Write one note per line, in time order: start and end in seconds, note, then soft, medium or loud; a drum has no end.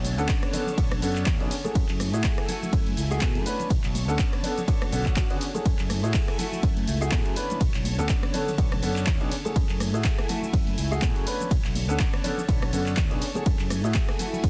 0.00 0.18 B1 medium
0.00 1.73 D3 medium
0.00 1.73 C#5 medium
0.00 1.73 A5 medium
0.05 open hi-hat loud
0.05 tambourine loud
0.05 high conga medium
0.05 shaker medium
0.18 0.27 D2 loud
0.18 0.51 B3 loud
0.18 0.51 C#4 medium
0.18 0.51 D4 medium
0.18 0.51 A4 loud
0.18 closed hi-hat soft
0.18 tambourine soft
0.18 shaker soft
0.29 kick loud
0.29 clap loud
0.29 closed hi-hat medium
0.29 ride medium
0.29 tambourine medium
0.29 shaker soft
0.42 cross-stick medium
0.42 closed hi-hat medium
0.42 high conga medium
0.53 0.68 B3 medium
0.53 0.68 C#4 medium
0.53 0.68 D4 medium
0.53 0.68 A4 medium
0.53 open hi-hat loud
0.53 tambourine medium
0.53 low conga medium
0.53 shaker medium
0.66 tambourine soft
0.66 low conga medium
0.66 shaker soft
0.77 0.99 B1 loud
0.77 0.92 B3 medium
0.77 0.92 C#4 medium
0.77 0.92 D4 medium
0.77 0.92 A4 loud
0.77 kick loud
0.77 closed hi-hat medium
0.77 ride medium
0.77 shaker soft
0.91 cross-stick medium
0.91 closed hi-hat medium
0.91 tambourine soft
0.91 high conga medium
1.02 1.23 F#2 loud
1.02 1.37 B3 medium
1.02 1.37 C#4 medium
1.02 1.37 D4 medium
1.02 1.37 A4 loud
1.02 open hi-hat loud
1.02 tambourine medium
1.02 shaker medium
1.16 clap soft
1.16 closed hi-hat soft
1.16 tambourine soft
1.16 shaker soft
1.26 1.40 E2 loud
1.26 kick loud
1.26 clap loud
1.26 closed hi-hat medium
1.26 ride medium
1.26 tambourine medium
1.26 high conga medium
1.26 shaker soft
1.40 1.49 B1 medium
1.40 1.52 B3 medium
1.40 1.52 C#4 medium
1.40 1.52 D4 medium
1.40 1.52 G#4 loud
1.40 closed hi-hat medium
1.51 open hi-hat loud
1.51 tambourine medium
1.51 shaker medium
1.64 2.10 A3 medium
1.64 2.10 E4 medium
1.64 2.10 F#4 medium
1.64 2.10 G#4 medium
1.64 closed hi-hat soft
1.64 tambourine soft
1.64 high conga medium
1.64 low conga medium
1.64 shaker soft
1.75 1.87 F#2 loud
1.75 3.44 A3 medium
1.75 3.44 E4 medium
1.75 3.44 G#5 medium
1.75 kick loud
1.75 closed hi-hat medium
1.75 ride medium
1.75 tambourine medium
1.75 shaker soft
1.89 2.13 F#2 medium
1.89 clap soft
1.89 closed hi-hat medium
1.89 tambourine soft
2.00 cross-stick medium
2.00 open hi-hat loud
2.00 tambourine medium
2.00 high conga medium
2.00 shaker medium
2.13 2.22 A2 loud
2.13 2.46 A3 medium
2.13 2.46 E4 medium
2.13 2.46 F#4 medium
2.13 2.46 G#4 loud
2.13 closed hi-hat soft
2.13 shaker soft
2.24 kick loud
2.24 clap loud
2.24 closed hi-hat medium
2.24 ride medium
2.24 shaker soft
2.38 cross-stick medium
2.38 closed hi-hat medium
2.38 high conga medium
2.48 3.07 A3 medium
2.48 3.08 E4 medium
2.48 3.08 F#4 medium
2.48 3.08 A4 loud
2.48 open hi-hat loud
2.48 tambourine medium
2.48 low conga medium
2.48 shaker medium
2.63 tambourine soft
2.63 low conga medium
2.63 shaker soft
2.73 2.94 F#2 loud
2.73 kick loud
2.73 closed hi-hat medium
2.73 ride medium
2.73 shaker soft
2.87 closed hi-hat medium
2.87 tambourine soft
2.87 high conga medium
2.97 3.18 C#2 loud
2.97 open hi-hat loud
2.97 tambourine medium
2.97 shaker medium
3.10 3.43 A3 medium
3.10 3.43 E4 medium
3.10 3.44 F#4 medium
3.10 3.44 G#4 loud
3.10 closed hi-hat soft
3.10 tambourine soft
3.10 shaker soft
3.21 3.37 B2 loud
3.21 kick loud
3.21 clap loud
3.21 closed hi-hat medium
3.21 ride medium
3.21 tambourine medium
3.21 high conga medium
3.21 shaker soft
3.35 3.44 F#2 medium
3.35 closed hi-hat medium
3.46 5.63 D3 medium
3.46 3.67 B3 medium
3.46 3.67 C#4 medium
3.46 3.67 D4 medium
3.46 3.67 B4 medium
3.46 5.63 C#5 medium
3.46 5.63 A5 medium
3.46 open hi-hat loud
3.46 tambourine loud
3.46 shaker medium
3.59 closed hi-hat soft
3.59 tambourine soft
3.59 high conga medium
3.59 low conga medium
3.59 shaker soft
3.70 3.82 B1 loud
3.70 kick loud
3.70 closed hi-hat medium
3.70 ride medium
3.70 tambourine medium
3.70 shaker soft
3.84 4.09 B1 medium
3.84 clap soft
3.84 closed hi-hat medium
3.84 tambourine soft
3.94 open hi-hat loud
3.94 tambourine medium
3.94 high conga loud
3.94 shaker medium
4.08 4.17 D2 loud
4.08 4.41 B3 medium
4.08 4.41 C#4 medium
4.08 4.41 D4 medium
4.08 4.41 A4 loud
4.08 closed hi-hat soft
4.08 tambourine soft
4.08 shaker soft
4.19 kick loud
4.19 clap loud
4.19 closed hi-hat medium
4.19 ride medium
4.19 shaker soft
4.33 cross-stick medium
4.33 closed hi-hat medium
4.33 tambourine soft
4.33 high conga medium
4.43 4.58 B3 medium
4.43 4.58 C#4 medium
4.43 4.58 D4 medium
4.43 4.58 A4 loud
4.43 open hi-hat loud
4.43 tambourine loud
4.43 low conga medium
4.43 shaker medium
4.57 closed hi-hat soft
4.57 tambourine soft
4.57 low conga medium
4.57 shaker soft
4.68 4.82 B3 medium
4.68 4.82 C#4 medium
4.68 4.82 D4 medium
4.68 4.83 A4 loud
4.68 kick loud
4.68 closed hi-hat medium
4.68 ride medium
4.68 swell medium
4.68 shaker soft
4.82 cross-stick medium
4.82 closed hi-hat medium
4.82 tambourine soft
4.82 high conga medium
4.92 5.04 B1 loud
4.92 5.27 B3 medium
4.92 5.27 C#4 medium
4.92 5.27 D4 medium
4.92 5.27 A4 loud
4.92 open hi-hat loud
4.92 tambourine loud
4.92 shaker medium
5.06 kick medium
5.06 clap soft
5.06 closed hi-hat soft
5.06 tambourine soft
5.06 shaker soft
5.16 kick loud
5.16 clap loud
5.16 closed hi-hat medium
5.16 ride medium
5.16 tambourine medium
5.16 high conga medium
5.16 shaker soft
5.30 5.42 B3 medium
5.30 5.42 C#4 medium
5.30 5.42 D4 medium
5.30 5.42 G#4 loud
5.30 closed hi-hat medium
5.30 tambourine soft
5.41 open hi-hat loud
5.41 tambourine loud
5.41 shaker medium
5.54 6.00 A3 medium
5.54 6.00 E4 medium
5.54 6.00 F#4 medium
5.54 6.00 G#4 medium
5.54 closed hi-hat soft
5.54 tambourine soft
5.54 high conga medium
5.54 low conga medium
5.54 shaker soft
5.65 5.77 F#2 medium
5.65 7.35 A3 medium
5.65 7.35 E4 medium
5.65 7.35 G#5 medium
5.65 kick loud
5.65 closed hi-hat medium
5.65 ride medium
5.65 shaker soft
5.79 6.04 F#2 medium
5.79 clap soft
5.79 closed hi-hat medium
5.79 tambourine soft
5.90 cross-stick medium
5.90 open hi-hat loud
5.90 tambourine loud
5.90 high conga medium
5.90 shaker medium
6.03 6.13 A2 loud
6.03 6.36 A3 medium
6.03 6.36 E4 medium
6.03 6.36 F#4 medium
6.03 6.36 G#4 loud
6.03 closed hi-hat soft
6.03 tambourine soft
6.03 shaker soft
6.14 kick loud
6.14 clap loud
6.14 closed hi-hat medium
6.14 ride medium
6.14 shaker soft
6.28 cross-stick medium
6.28 closed hi-hat medium
6.28 high conga medium
6.38 6.97 A3 medium
6.38 6.98 E4 medium
6.38 6.98 F#4 medium
6.38 6.98 A4 medium
6.38 open hi-hat loud
6.38 tambourine medium
6.38 low conga loud
6.38 shaker medium
6.52 tambourine soft
6.52 low conga medium
6.52 shaker soft
6.63 6.84 F#2 loud
6.63 kick loud
6.63 closed hi-hat medium
6.63 ride medium
6.63 tambourine medium
6.63 shaker soft
6.77 closed hi-hat medium
6.77 tambourine soft
6.77 high conga medium
6.87 7.08 C#2 loud
6.87 open hi-hat loud
6.87 tambourine loud
6.87 shaker medium
7.01 7.33 A3 medium
7.01 7.34 E4 medium
7.01 7.34 F#4 medium
7.01 7.34 G#4 loud
7.01 closed hi-hat soft
7.01 tambourine soft
7.01 shaker soft
7.11 7.26 B2 loud
7.11 kick loud
7.11 clap loud
7.11 closed hi-hat medium
7.11 ride medium
7.11 tambourine medium
7.11 high conga medium
7.11 shaker soft
7.26 7.35 F#2 medium
7.26 closed hi-hat medium
7.36 9.54 D3 medium
7.36 7.57 B3 medium
7.36 7.57 C#4 medium
7.36 7.58 D4 medium
7.36 7.58 B4 medium
7.36 9.54 C#5 medium
7.36 9.54 A5 medium
7.36 open hi-hat loud
7.36 tambourine loud
7.36 shaker medium
7.50 closed hi-hat soft
7.50 tambourine soft
7.50 high conga loud
7.50 low conga medium
7.50 shaker soft
7.60 7.72 B1 loud
7.60 kick loud
7.60 closed hi-hat medium
7.60 ride medium
7.60 tambourine medium
7.60 shaker soft
7.74 7.99 B1 medium
7.74 clap soft
7.74 closed hi-hat medium
7.74 tambourine soft
7.84 open hi-hat loud
7.84 tambourine medium
7.84 high conga loud
7.84 shaker medium
7.98 8.08 D2 loud
7.98 8.31 B3 loud
7.98 8.31 C#4 medium
7.98 8.31 D4 medium
7.98 8.31 A4 loud
7.98 closed hi-hat soft
7.98 tambourine soft
7.98 shaker soft
8.09 kick loud
8.09 clap loud
8.09 closed hi-hat medium
8.09 ride medium
8.09 shaker soft
8.22 cross-stick medium
8.22 closed hi-hat medium
8.22 high conga medium
8.33 8.48 B3 medium
8.33 8.48 C#4 medium
8.33 8.48 D4 medium
8.33 8.48 A4 loud
8.33 open hi-hat loud
8.33 tambourine medium
8.33 low conga loud
8.33 shaker medium
8.47 tambourine soft
8.47 low conga medium
8.47 shaker soft
8.58 8.79 B1 loud
8.58 8.72 B3 medium
8.58 8.72 C#4 medium
8.58 8.73 D4 medium
8.58 8.73 A4 loud
8.58 kick loud
8.58 closed hi-hat medium
8.58 ride medium
8.58 shaker soft
8.71 cross-stick medium
8.71 closed hi-hat medium
8.71 tambourine soft
8.71 high conga medium
8.82 9.04 F#2 loud
8.82 9.17 B3 medium
8.82 9.17 C#4 medium
8.82 9.17 D4 medium
8.82 9.18 A4 loud
8.82 open hi-hat loud
8.82 tambourine medium
8.82 shaker medium
8.96 clap soft
8.96 closed hi-hat soft
8.96 tambourine soft
8.96 shaker soft
9.06 9.21 E2 loud
9.06 kick loud
9.06 clap loud
9.06 closed hi-hat medium
9.06 ride medium
9.06 tambourine medium
9.06 high conga medium
9.06 shaker soft
9.20 9.30 B1 medium
9.20 9.32 B3 medium
9.20 9.32 C#4 medium
9.20 9.32 D4 medium
9.20 9.33 G#4 loud
9.20 closed hi-hat medium
9.31 open hi-hat loud
9.31 tambourine medium
9.31 shaker medium
9.45 9.90 A3 medium
9.45 9.90 E4 medium
9.45 9.91 F#4 medium
9.45 9.91 G#4 medium
9.45 closed hi-hat soft
9.45 tambourine soft
9.45 high conga loud
9.45 low conga medium
9.45 shaker soft
9.56 9.67 F#2 loud
9.56 11.25 A3 medium
9.56 11.25 E4 medium
9.56 11.25 G#5 medium
9.56 kick loud
9.56 closed hi-hat medium
9.56 ride medium
9.56 shaker soft
9.69 9.94 F#2 medium
9.69 clap soft
9.69 closed hi-hat medium
9.69 tambourine soft
9.80 cross-stick medium
9.80 open hi-hat loud
9.80 tambourine medium
9.80 high conga loud
9.80 shaker medium
9.93 10.03 A2 loud
9.93 10.26 A3 medium
9.93 10.26 E4 medium
9.93 10.26 F#4 medium
9.93 10.27 G#4 loud
9.93 closed hi-hat soft
9.93 tambourine soft
9.93 shaker soft
10.04 kick loud
10.04 clap loud
10.04 closed hi-hat medium
10.04 ride medium
10.04 shaker soft
10.18 cross-stick medium
10.18 closed hi-hat medium
10.18 high conga medium
10.28 10.88 A3 medium
10.28 10.88 E4 medium
10.28 10.88 F#4 medium
10.28 10.88 A4 medium
10.28 open hi-hat loud
10.28 tambourine medium
10.28 low conga loud
10.28 shaker medium
10.42 tambourine soft
10.42 low conga medium
10.42 shaker soft
10.53 10.74 F#2 loud
10.53 kick loud
10.53 closed hi-hat medium
10.53 ride medium
10.53 tambourine medium
10.53 shaker soft
10.67 closed hi-hat medium
10.67 tambourine soft
10.67 high conga loud
10.78 10.99 C#2 loud
10.78 open hi-hat loud
10.78 tambourine medium
10.78 shaker medium
10.91 11.24 A3 medium
10.91 11.24 E4 medium
10.91 11.24 F#4 medium
10.91 11.24 G#4 loud
10.91 closed hi-hat soft
10.91 tambourine soft
10.91 shaker soft
11.02 11.16 B2 loud
11.02 kick loud
11.02 clap loud
11.02 closed hi-hat medium
11.02 ride medium
11.02 tambourine soft
11.02 high conga medium
11.02 shaker soft
11.16 11.25 F#2 medium
11.16 closed hi-hat soft
11.26 13.44 D3 medium
11.26 11.48 B3 medium
11.26 11.48 C#4 medium
11.26 11.48 D4 medium
11.26 11.48 B4 medium
11.26 13.44 C#5 medium
11.26 13.44 A5 medium
11.26 open hi-hat loud
11.26 tambourine loud
11.26 shaker medium
11.39 closed hi-hat soft
11.39 tambourine soft
11.39 high conga loud
11.39 low conga medium
11.39 shaker soft
11.51 11.62 B1 loud
11.51 kick loud
11.51 closed hi-hat medium
11.51 ride medium
11.51 tambourine soft
11.51 shaker soft
11.64 11.89 B1 medium
11.64 clap soft
11.64 closed hi-hat soft
11.64 tambourine soft
11.75 open hi-hat loud
11.75 tambourine medium
11.75 high conga medium
11.75 shaker medium
11.89 11.98 D2 loud
11.89 12.21 B3 loud
11.89 12.21 C#4 medium
11.89 12.22 D4 medium
11.89 12.22 A4 loud
11.89 closed hi-hat soft
11.89 shaker soft
12.00 kick loud
12.00 clap loud
12.00 closed hi-hat medium
12.00 ride medium
12.00 shaker soft
12.13 cross-stick medium
12.13 closed hi-hat soft
12.13 tambourine soft
12.13 high conga medium
12.24 12.38 B3 medium
12.24 12.38 C#4 medium
12.24 12.39 D4 medium
12.24 12.39 A4 loud
12.24 open hi-hat loud
12.24 tambourine medium
12.24 low conga medium
12.24 shaker medium
12.37 tambourine soft
12.37 low conga medium
12.37 shaker soft
12.48 12.69 B1 loud
12.48 12.63 B3 loud
12.48 12.63 C#4 medium
12.48 12.63 D4 medium
12.48 12.63 A4 loud
12.48 kick loud
12.48 closed hi-hat medium
12.48 ride medium
12.48 tambourine medium
12.48 shaker soft
12.62 cross-stick medium
12.62 closed hi-hat medium
12.62 tambourine soft
12.62 high conga loud
12.73 12.94 F#2 loud
12.73 13.07 B3 medium
12.73 13.08 C#4 medium
12.73 13.08 D4 medium
12.73 13.08 A4 loud
12.73 open hi-hat loud
12.73 tambourine medium
12.73 shaker medium
12.86 clap soft
12.86 closed hi-hat soft
12.86 tambourine soft
12.86 shaker soft
12.97 13.11 E2 loud
12.97 kick loud
12.97 clap loud
12.97 closed hi-hat medium
12.97 ride medium
12.97 tambourine soft
12.97 high conga medium
12.97 shaker soft
13.11 13.20 B1 medium
13.11 13.22 B3 medium
13.11 13.23 C#4 medium
13.11 13.23 D4 medium
13.11 13.23 G#4 loud
13.11 closed hi-hat soft
13.11 tambourine soft
13.21 open hi-hat loud
13.21 tambourine medium
13.21 shaker medium
13.34 13.81 A3 medium
13.34 13.81 E4 medium
13.34 13.81 F#4 medium
13.34 13.81 G#4 medium
13.34 closed hi-hat soft
13.34 tambourine soft
13.34 high conga loud
13.34 low conga medium
13.34 shaker soft
13.46 13.57 F#2 loud
13.46 14.50 A3 medium
13.46 14.50 E4 medium
13.46 14.50 G#5 loud
13.46 kick loud
13.46 closed hi-hat medium
13.46 ride medium
13.46 shaker soft
13.59 13.84 F#2 medium
13.59 clap soft
13.59 closed hi-hat medium
13.59 tambourine soft
13.70 cross-stick medium
13.70 open hi-hat loud
13.70 tambourine loud
13.70 high conga loud
13.70 shaker medium
13.84 13.93 A2 loud
13.84 14.16 A3 medium
13.84 14.17 E4 medium
13.84 14.17 F#4 medium
13.84 14.17 G#4 medium
13.84 closed hi-hat soft
13.84 tambourine soft
13.84 shaker soft
13.94 kick loud
13.94 clap loud
13.94 closed hi-hat medium
13.94 ride medium
13.94 shaker soft
14.09 cross-stick medium
14.09 closed hi-hat soft
14.09 high conga medium
14.18 14.50 A3 medium
14.18 14.50 E4 medium
14.18 14.50 F#4 medium
14.18 14.50 A4 medium
14.18 open hi-hat loud
14.18 tambourine medium
14.18 low conga medium
14.18 shaker medium
14.33 tambourine soft
14.33 low conga loud
14.33 shaker soft
14.44 14.50 F#2 loud
14.44 kick loud
14.44 closed hi-hat medium
14.44 ride medium
14.44 shaker soft